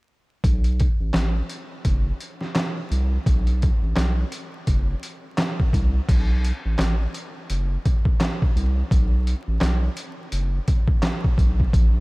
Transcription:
0.44 B1, kick, closed hi-hat
0.64 closed hi-hat
0.80 kick, closed hi-hat
1.01 A1
1.14 A1, snare, clap, closed hi-hat
1.49 closed hi-hat
1.85 F#1, kick, closed hi-hat
2.21 closed hi-hat
2.41 snare
2.55 snare, clap, closed hi-hat
2.91 C2, closed hi-hat
3.26 B1, kick, closed hi-hat
3.47 closed hi-hat
3.62 kick, closed hi-hat
3.83 A1
3.96 B1, snare, clap, closed hi-hat
4.32 closed hi-hat
4.67 F#1, kick, closed hi-hat
5.03 closed hi-hat
5.38 snare, clap, closed hi-hat
5.60 kick
5.73 C2, kick, closed hi-hat
6.09 B1, kick, closed hi-hat, crash
6.44 closed hi-hat
6.66 A1
6.79 A1, snare, clap, closed hi-hat
7.14 closed hi-hat
7.50 F#1, closed hi-hat
7.86 kick, closed hi-hat
8.05 kick
8.20 snare, clap, closed hi-hat
8.42 kick
8.56 C2, closed hi-hat
8.91 B1, kick, closed hi-hat
9.27 closed hi-hat
9.48 A1
9.61 B1, snare, clap, closed hi-hat
9.97 closed hi-hat
10.32 F#1, closed hi-hat
10.68 kick, closed hi-hat
10.88 kick
11.02 snare, clap, closed hi-hat
11.24 kick
11.38 B1, kick, closed hi-hat
11.60 kick
11.73 A#1, kick, closed hi-hat

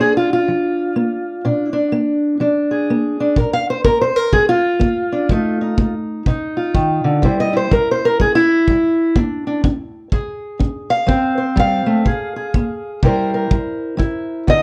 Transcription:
Already playing: D4
0.00 A#3 G#4
0.17 F4
0.33 F4
0.48 F3
0.96 A#3
1.45 A#2 D4
1.73 D4
1.92 A#3
2.40 F3 D4
2.71 G#4
2.90 A#3
3.20 D4
3.36 A#2 A#4, kick
3.53 F5
3.70 C5
3.85 A#3 A#4, kick
4.01 C5
4.16 A#4
4.33 F3 G#4, kick
4.49 F4
4.79 A#3, kick
5.12 D4
5.29 F3 A3 D#4, kick
5.61 D#4
5.78 A3, kick
6.26 C3 D#4, kick
6.57 F4
6.74 D#3, kick
7.04 D3
7.22 C3 G3 E4 C5, kick
7.40 D#5
7.53 E4 C5
7.71 G3 A#4, kick
7.91 C5
8.05 A#4
8.20 G3 G#4, kick
8.35 E4
8.68 G3, kick
9.16 A#3 D4, kick
9.47 D4
9.64 D4, kick
10.12 F3 G#4, kick
10.59 D4, kick
10.90 F5
11.06 F3 C4 C5, kick
11.38 C5
11.56 G3 F5, kick
11.86 A3
12.05 A#2 G#4, kick
12.36 G#4
12.54 A#3, kick
13.03 C3 G3 E4 A#4 C5, kick
13.34 A#4
13.51 G3, kick
13.97 G3 E4, kick
14.47 D3 D#5, kick

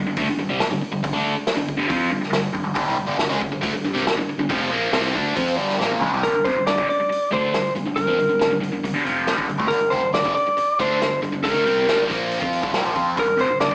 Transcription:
0.05 G1 G2 D3
0.16 D2 D3 A3, kick, open hi-hat
0.27 G1 G2 D3
0.38 G1 G2 D3
0.49 C2 C3 G3
0.59 muted fingered electric bass stroke, muted overdriven electric guitar stroke, snare, open hi-hat
0.70 G1 G2 D3
0.81 muted fingered electric bass stroke, muted overdriven electric guitar stroke
0.92 G1 G2 D3
1.03 G1 G2 D3, kick, open hi-hat
1.13 D2 D3 A3 D4
1.35 muted overdriven electric guitar stroke, muted fingered electric bass stroke
1.47 snare, open hi-hat
1.56 G1 G2 D3
1.69 kick
1.77 G1 G2 D3
1.88 F2 F3 C4 F4, kick, open hi-hat
2.11 G1 G2 D3
2.22 muted overdriven electric guitar stroke, muted fingered electric bass stroke, snare
2.31 G1 G2 D3, snare, open hi-hat
2.53 G1 G2 D3, kick
2.64 G1 G2 D3
2.74 G1 G2 D3, kick, open hi-hat
2.85 C2 C3 G3
2.95 G1 G2 D3
3.07 G1 G2 D3
3.18 G1 G2 D3, snare, open hi-hat
3.29 C#2 C#3 G#3, snare
3.40 G1 G2 D3, kick
3.52 G1 G2 D3
3.61 D2 D3 A3, kick, open hi-hat
3.73 G1 G2 D3
3.84 G1 G2 D3
3.94 C2 C3 G3, snare
4.06 muted fingered electric bass stroke, muted overdriven electric guitar stroke, snare, open hi-hat
4.16 G1 G2 D3
4.27 muted fingered electric bass stroke, muted overdriven electric guitar stroke
4.38 G1 G2 D3
4.49 F1 F2 C3 F3, kick, open hi-hat
4.71 A#1 A#2 F3 A#3
4.92 C2 C3 G3 C4, snare, open hi-hat
5.05 snare
5.14 D2 D3 A3 D4, kick
5.35 F2 F3 C4 F4, kick, open hi-hat
5.56 G1 G2 D3 G3
5.69 snare
5.78 A#1 A#2 F3 A#3, snare
5.91 high tom
6.00 C#2 C#3 G#3, mid tom
6.11 C2 C3 G3, floor tom
6.23 G1 G2 D3 A#4, kick, open hi-hat
6.33 G1 G2 D3
6.44 F1 F2 C3 C5, kick, open hi-hat
6.55 G1 G2 D3
6.65 G1 G2 D3 D5, snare, open hi-hat
6.78 G1 G2 D3, kick
6.88 D5, muted fingered electric bass stroke, muted overdriven electric guitar stroke, open hi-hat
6.99 muted fingered electric bass stroke, muted overdriven electric guitar stroke
7.09 muted overdriven electric guitar stroke, muted fingered electric bass stroke, open hi-hat
7.31 D2 D3 A3 D4 C5, kick, open hi-hat
7.52 G1 G2 D3, snare, open hi-hat
7.75 G1 G2 D3, open hi-hat
7.86 G1 G2 D3
7.96 G1 G2 D3 A#4, kick, open hi-hat
8.07 F2 F3 C4
8.18 G1 G2 D3, open hi-hat
8.28 G1 G2 D3
8.39 G1 G2 D3, snare, open hi-hat
8.50 G1 G2 D3
8.60 G1 G2 D3, open hi-hat
8.72 G1 G2 D3
8.83 G1 G2 D3, kick, open hi-hat
8.93 G1 G2 D3
9.03 F1 F2 C3 F3, open hi-hat
9.27 snare, open hi-hat
9.36 G1 G2 D3, kick
9.48 G1 G2 D3, open hi-hat
9.58 D2 D3 A3, kick
9.68 G1 G2 D3 A#4, kick, open hi-hat
9.80 G1 G2 D3
9.90 F1 F2 C3 C5, kick, open hi-hat
10.03 G1 G2 D3
10.13 G1 G2 D3 D5, snare, open hi-hat
10.24 G1 G2 D3, kick
10.35 D5, muted overdriven electric guitar stroke, muted fingered electric bass stroke, open hi-hat
10.47 muted overdriven electric guitar stroke, muted fingered electric bass stroke
10.57 muted overdriven electric guitar stroke, muted fingered electric bass stroke, open hi-hat
10.79 D2 D3 A3 D4 C5, kick, open hi-hat
11.01 G1 G2 D3, snare, open hi-hat
11.22 G1 G2 D3, open hi-hat
11.33 G1 G2 D3
11.43 C#2 C#3 G#3 A#4, kick, open hi-hat
11.54 D2 D3 A3
11.65 C2 C3 G3 C4, open hi-hat
11.86 G1 G2 D3 G3, snare, open hi-hat
12.07 A#1 A#2 F3 A#3, kick, open hi-hat
12.31 open hi-hat
12.40 F2 F3 C4 F4, kick
12.53 open hi-hat
12.61 G1 G2 D3, kick
12.72 C2 C3 G3, snare, open hi-hat
12.84 A#1 A#2 F3
12.93 F2 F3 C4 F4, kick, open hi-hat
13.16 G1 G2 D3 A#4, kick, open hi-hat
13.26 G1 G2 D3
13.37 F1 F2 C3 C5, open hi-hat
13.49 G1 G2 D3
13.60 G1 G2 D3 D5, snare, open hi-hat
13.71 G1, kick

